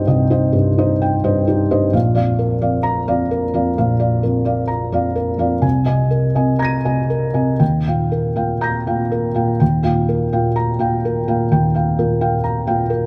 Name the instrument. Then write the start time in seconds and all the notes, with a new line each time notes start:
felt piano
Already playing: C2 G2 D#4 G4 C5 D#5 G5
0.07 C2 D#5
0.30 D#4 C5 D#5
0.52 G2 G4
0.78 D#4 C5 D#5
1.02 G5
1.24 G2 C5 D#5
1.47 D#4 G4
1.71 G2 C5 D#5
1.93 A#1 F5
2.15 F2 D5 F5
2.39 A#4
2.61 F2 D5 F5
2.83 A#5
3.08 F2 D5 F5
3.31 A#4
3.54 F2 D5 F5
3.78 A#1 F5
4.00 D5 F5
4.23 F2 A#4
4.45 D5 F5
4.68 A#5
4.92 F2 D5 F5
5.16 A#4
5.38 F2 D5 F5
5.62 C2 G#5
5.86 C3 D#5 G#5
6.11 A#4
6.35 C3 D#5 G#5
6.59 A#5 G#6 A#6
6.65 D#7
6.85 C3 D#5 G#5
7.10 A#4
7.34 C3 D#5 G#5
7.60 D#2 G5
7.87 A#2 F5 G5
8.12 A#4
8.36 A#2 F5 G5
8.61 A#5 G6 A#6
8.87 A#2 F5 G5
9.11 A#4
9.34 A#2 F5 G5
9.60 D#2 G5
9.83 A#2 F5 G5
10.09 A#4
10.32 A#2 F5 G5
10.56 A#5
10.79 A#2 F5 G5
11.05 A#4
11.28 A#2 F5 G5
11.52 D#2 G5
11.74 F5 G5
11.98 A#2 A#4
12.21 F5 G5
12.44 A#5
12.67 A#2 F5 G5
12.90 A#4